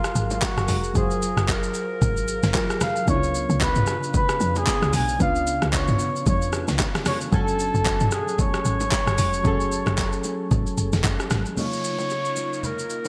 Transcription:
Already playing: F#3 F4 G#4 A#4 F5
0.04 cross-stick, shaker
0.15 G#1, shaker
0.31 F4, low bongo, shaker
0.42 F#4, kick, clap, high bongo, low bongo, shaker
0.57 F#1, cross-stick, shaker
0.68 F1, open hi-hat, low conga, shaker
0.84 shaker
0.94 F#1 F#3 F4 G#4, kick, low conga, shaker
0.98 C5
1.11 shaker
1.22 shaker
1.37 F#1, cross-stick, shaker
1.48 A#4, kick, clap, high bongo, shaker
1.63 shaker
1.74 shaker
2.01 G#1, kick, low conga, shaker
2.17 shaker
2.28 shaker
2.43 F#1, snare, low bongo, shaker
2.54 F#3 F4 G#4 A#4, kick, clap, high bongo, low bongo, shaker
2.70 cross-stick, shaker
2.81 F5, cross-stick, snare, low conga, shaker
2.96 shaker
3.06 C#2 C#3 B3 D4 E4 C#5, kick, low conga, shaker
3.16 F4
3.23 shaker
3.35 shaker
3.50 C#2, shaker
3.60 B4, kick, clap, high bongo, shaker
3.75 mid tom, shaker
3.87 cross-stick, shaker
4.04 shaker
4.14 B4, kick, low conga, shaker
4.29 cross-stick, shaker
4.40 F2, shaker
4.56 G#4, low bongo, shaker
4.67 kick, clap, high bongo, low bongo, shaker
4.82 C#2, cross-stick, shaker
4.93 B1 G#5, open hi-hat, low conga, shaker
5.09 shaker
5.19 C#2 C#3 B3 D4 F4 F5, kick, low conga, shaker
5.36 shaker
5.47 shaker
5.62 C#2, cross-stick, shaker
5.69 F5, shaker
5.73 C#5, kick, clap, high bongo
5.88 mid tom, shaker
5.99 shaker
6.16 shaker
6.26 F2 C#5, kick, low conga, shaker
6.42 shaker
6.53 cross-stick, shaker
6.68 C#2, snare, low bongo, shaker
6.79 kick, clap, high bongo, low bongo, shaker
6.95 cross-stick, snare, shaker
7.06 C#5, cross-stick, snare, open hi-hat, low conga, shaker
7.21 shaker
7.31 F#1 F#3 A3 C#4 A4 G#5, kick, low conga, shaker
7.48 shaker
7.60 shaker
7.75 F#1, shaker
7.85 kick, clap, high bongo, shaker
8.00 mid tom, shaker
8.11 G#4, cross-stick, shaker
8.28 shaker
8.38 C#5, kick, low conga, shaker
8.54 cross-stick, shaker
8.65 G#1, shaker
8.80 low bongo, shaker
8.92 kick, clap, high bongo, low bongo, shaker
9.07 F#1, cross-stick, shaker
9.18 F1, open hi-hat, low conga, shaker
9.33 shaker
9.43 F#1 F#3 C#4 G#4 A4, kick, low conga, shaker
9.61 shaker
9.72 shaker
9.86 F#1, cross-stick, low bongo, shaker
9.97 kick, clap, high bongo, shaker
10.13 shaker
10.24 low bongo, shaker
10.51 G#1, kick, low conga, shaker
10.67 shaker
10.78 F#1, shaker
10.93 F1, snare, low bongo, shaker
11.04 F#1, kick, clap, high bongo, low bongo, shaker
11.20 cross-stick, shaker
11.30 G#1, cross-stick, snare, low conga, shaker
11.46 shaker
11.56 C#3 A#3 D#4 F4 C#5, downlifter, low conga, shaker
11.73 shaker
11.84 shaker
11.98 low bongo, shaker
12.10 high bongo, shaker
12.25 shaker
12.36 low bongo, shaker
12.53 shaker
12.63 A#4, low conga, shaker
12.79 shaker
12.90 shaker

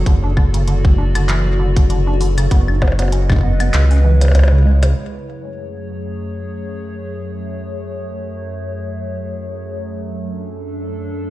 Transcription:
Already playing: A4
0.06 F#1 D3 F#4 D5, kick, closed hi-hat
0.23 D4
0.37 D3, kick, claves
0.54 C#3, closed hi-hat
0.68 D3, closed hi-hat
0.85 G#3, kick
0.98 D4
1.15 D3, closed hi-hat, claves
1.29 E3, clap, closed hi-hat
1.46 F#3
1.59 D3
1.76 D3, kick, closed hi-hat
1.90 D3, closed hi-hat
2.07 D4
2.21 D3, open hi-hat
2.38 C#3, closed hi-hat, claves
2.51 F#1 F#3 B3 B4 D#5 F#5, kick, closed hi-hat
2.68 D#4, claves
2.82 B3, kick, percussion blips
2.88 percussion blips
2.92 percussion blips
2.99 B3, closed hi-hat, percussion blips
3.02 percussion blips
3.08 percussion blips
3.12 C#4, closed hi-hat
3.30 D#4, kick, claves
3.32 kick
3.36 kick
3.39 kick
3.41 B3, kick
3.60 B3, closed hi-hat, claves
3.74 C#2 C#3 G#3 E4 C#5, clap, closed hi-hat
3.91 C#4, open hi-hat
4.04 E3
4.21 C#3, closed hi-hat, percussion blips
4.25 percussion blips
4.28 percussion blips
4.32 C#2, closed hi-hat, percussion blips
4.35 percussion blips
4.39 percussion blips
4.43 percussion blips
4.48 percussion blips
4.52 C#3
4.65 G#3
4.83 C#3, closed hi-hat, percussion blips
4.96 F#2 F#3 A3 G#4 C#5
9.86 D4 A4

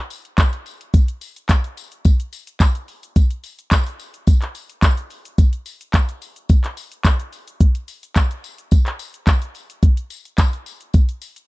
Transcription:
0.10 open hi-hat, tambourine
0.25 closed hi-hat
0.38 kick, clap, closed hi-hat, tambourine
0.53 closed hi-hat
0.66 open hi-hat, tambourine
0.81 closed hi-hat
0.94 kick, closed hi-hat, tambourine, shaker
1.08 closed hi-hat, shaker
1.21 open hi-hat, tambourine, shaker
1.36 closed hi-hat, shaker
1.49 kick, clap, closed hi-hat, tambourine, shaker
1.64 closed hi-hat, shaker
1.77 open hi-hat, tambourine, shaker
1.92 closed hi-hat, shaker
2.05 kick, closed hi-hat, tambourine, shaker
2.20 closed hi-hat, shaker
2.33 open hi-hat, tambourine, shaker
2.47 closed hi-hat, shaker
2.60 kick, clap, closed hi-hat, tambourine, shaker
2.75 closed hi-hat, shaker
2.88 open hi-hat, shaker
3.03 closed hi-hat, shaker
3.16 kick, closed hi-hat, tambourine, shaker
3.30 closed hi-hat, shaker
3.44 open hi-hat, tambourine, shaker
3.59 closed hi-hat, shaker
3.71 kick, clap, closed hi-hat, tambourine, shaker
3.87 closed hi-hat, shaker
4.00 open hi-hat, tambourine, shaker
4.14 closed hi-hat, shaker
4.27 kick, closed hi-hat, tambourine, shaker
4.42 clap, closed hi-hat, shaker
4.55 open hi-hat, tambourine, shaker
4.70 closed hi-hat, shaker
4.82 kick, clap, closed hi-hat, tambourine, shaker
4.97 closed hi-hat, shaker
5.10 open hi-hat, shaker
5.25 closed hi-hat, shaker
5.38 kick, closed hi-hat, tambourine, shaker
5.53 closed hi-hat, shaker
5.66 open hi-hat, tambourine, shaker
5.81 closed hi-hat, shaker
5.94 kick, clap, closed hi-hat, tambourine, shaker
6.09 closed hi-hat, shaker
6.22 open hi-hat, tambourine, shaker
6.36 closed hi-hat, shaker
6.49 kick, closed hi-hat, tambourine, shaker
6.64 clap, closed hi-hat, shaker
6.77 open hi-hat, tambourine, shaker
6.92 closed hi-hat, shaker
7.05 kick, clap, closed hi-hat, tambourine, shaker
7.20 closed hi-hat, shaker
7.33 open hi-hat, tambourine, shaker
7.48 closed hi-hat, shaker
7.60 kick, closed hi-hat, shaker
7.75 closed hi-hat, shaker
7.88 open hi-hat, tambourine, shaker
8.03 closed hi-hat, shaker
8.16 kick, clap, closed hi-hat, tambourine, shaker
8.31 closed hi-hat, shaker
8.44 open hi-hat, tambourine, shaker
8.58 closed hi-hat, shaker
8.71 kick, closed hi-hat, tambourine, shaker
8.86 clap, closed hi-hat, shaker
8.99 open hi-hat, tambourine, shaker
9.14 closed hi-hat, shaker
9.27 kick, clap, closed hi-hat, tambourine, shaker
9.42 closed hi-hat, shaker
9.55 open hi-hat, tambourine, shaker
9.70 closed hi-hat, shaker
9.83 kick, closed hi-hat, shaker
9.97 closed hi-hat, shaker
10.10 open hi-hat, tambourine, shaker
10.25 closed hi-hat, shaker
10.38 kick, clap, closed hi-hat, tambourine, shaker
10.53 closed hi-hat, shaker
10.66 open hi-hat, tambourine, shaker
10.81 closed hi-hat, shaker
10.93 kick, closed hi-hat, tambourine, shaker
11.09 closed hi-hat, shaker
11.22 open hi-hat, tambourine, shaker
11.36 closed hi-hat, shaker

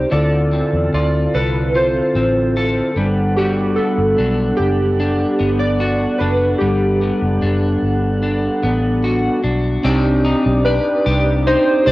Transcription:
Already playing: C4 D#4 G4 D5
0.10 D2 D3 C4 E4 F4 A4 D5
0.15 A4
0.53 C4
0.73 E2
0.93 D2 F4 D5
1.34 C2 A4 B4
1.75 F4 C5
2.15 A1 C4
2.57 A4
2.95 G1 G3 B3 D4 F#5
3.00 A4
3.36 G3 F#4 G4
3.76 B3 A4
3.98 G1
4.18 B1 D4
4.57 F#1 G4
5.00 D4
5.40 G1 B3
5.59 D5
5.80 F#4
6.18 F#1 D4 B4
6.58 G1 G3 G4
7.02 B3
7.22 F#1
7.42 F#1 D4
7.82 G1
8.23 D4
8.63 A1 B3
9.04 F#4
9.44 B1 D4
9.83 C2 C4 D4 D#4 G4 D5 G5 D6
9.87 G4
10.25 D#4
10.46 B1
10.65 B4 D5
11.06 C2 G4
11.47 D#4 C5
11.86 C2 C5 D5

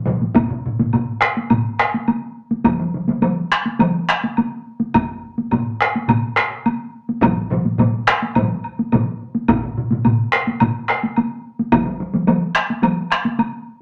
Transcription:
0.06 taiko low-mid, taiko mid
0.21 taiko high
0.35 taiko, taiko low-mid, taiko high, high woodblock
0.50 taiko low-mid
0.66 taiko low-mid
0.79 taiko low-mid, taiko high
0.93 taiko low-mid, taiko high, high woodblock
1.22 taiko rim
1.37 taiko high
1.50 taiko low-mid, taiko high, high woodblock
1.79 taiko rim, high woodblock
1.94 taiko high
2.08 taiko high, high woodblock
2.51 taiko high
2.64 taiko, taiko mid, taiko high, high woodblock
2.80 taiko mid
2.94 taiko mid
3.08 taiko mid, taiko high
3.22 taiko mid, taiko high, high woodblock
3.52 taiko rim
3.66 taiko high
3.79 taiko mid, taiko high, high woodblock
4.09 taiko rim, high woodblock
4.24 taiko high
4.37 taiko high, high woodblock
4.80 taiko high
4.94 taiko, taiko high, high woodblock
5.38 taiko high
5.51 taiko low-mid, taiko high, high woodblock
5.81 taiko rim
5.95 taiko high
6.08 taiko low-mid, taiko high, high woodblock
6.37 taiko rim, high woodblock
6.66 taiko high, high woodblock
7.09 taiko high
7.22 taiko, taiko low-mid, taiko mid, taiko high, high woodblock
7.50 taiko low-mid, taiko mid
7.65 taiko high
7.78 taiko low-mid, taiko mid, taiko high, high woodblock
8.08 taiko rim
8.22 taiko high
8.35 taiko low-mid, taiko mid, taiko high, high woodblock
8.64 high woodblock
8.79 taiko high
8.92 taiko low-mid, taiko mid, taiko high, high woodblock
9.35 taiko high
9.48 taiko, taiko low-mid, taiko high, high woodblock
9.63 taiko low-mid
9.77 taiko low-mid
9.91 taiko low-mid, taiko high
10.05 taiko low-mid, taiko high, high woodblock
10.33 taiko rim
10.47 taiko high
10.60 taiko low-mid, taiko high, high woodblock
10.89 taiko rim, high woodblock
11.03 taiko high
11.16 taiko high, high woodblock
11.59 taiko high
11.72 taiko, taiko mid, taiko high, high woodblock
11.85 taiko mid
12.00 taiko mid
12.14 taiko mid, taiko high
12.27 taiko mid, taiko high, high woodblock
12.55 taiko rim
12.70 taiko high
12.83 taiko mid, taiko high, high woodblock
13.11 taiko rim, high woodblock
13.25 taiko high
13.39 taiko high, high woodblock

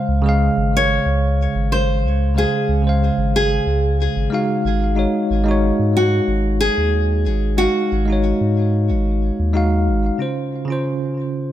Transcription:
Already playing: C#3 G#3 C5 F5
0.08 C#2
0.21 C#3 G#3
0.26 G#4 F5
0.57 G#1
0.77 C#5
1.06 C#2
1.55 G#1
1.72 C5
2.04 C#2
2.35 C#3 G#3 G#4 C5 F5
2.69 C#2
2.82 C#3 G#3
2.87 C5 F5
3.18 G#1
3.36 G#4
3.66 C#2
4.16 G#1
4.30 G#3 D#4 F#4 F5
4.65 G#1
4.95 G#3 D#4 F#4 C#5
5.30 G#1
5.44 G#3 D#4
5.49 F#4 C#5
5.79 G#2
5.97 F#4
6.28 G#1
6.61 G#4
6.77 D#2
7.26 G#1
7.58 G#3 D#4 F#4 F5
7.92 G#1
8.06 G#3 D#4
8.10 F#4 C#5
8.41 G#2
8.90 G#1
9.39 D#2
9.53 G#3 D#4 F#4 F5
9.88 G#1
10.18 C#3 C#4 F4 C5
10.65 C#3 C#4
10.70 F4 C5

